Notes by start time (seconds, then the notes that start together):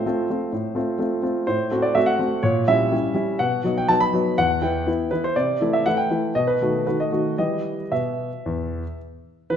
Already playing: C5
0.06 A3 C4 F4
0.30 A3 C4 F4
0.53 A2
0.75 A3 C4 F4
0.99 A3 C4 F4
1.23 A3 C4 F4
1.47 A2 C5
1.71 A3 C4 F#4
1.82 D5
1.95 A3 C4 F#4 E5
2.06 F#5
2.19 A3 C4 F#4
2.43 A#2 C#5
2.68 G3 C#4 E4 E5
2.92 G3 C#4 E4
3.14 G3 C#4 E4
3.39 B2 F#5
3.64 F#3 B3 D#4
3.78 G5
3.88 F#3 B3 D#4 A5
4.00 B5
4.13 F#3 B3 D#4
4.38 E2 F#5
4.62 E3 B3 E4 G5
4.87 E3 B3 E4
5.11 E3 B3 E4 B4
5.24 C5
5.36 C3 D5
5.61 E3 A3 E4
5.73 E5
5.86 E3 A3 E4 F#5
5.97 G5
6.10 E3 A3 E4
6.35 B2 D#5
6.47 B4
6.61 D#3 A3 F#4
6.87 D#3 A3 F#4 B4
7.00 D#5
7.12 D#3 A3 F#4
7.38 E3 G3 G4 D#5
7.92 B2 E5
8.46 E2
9.50 E3 B4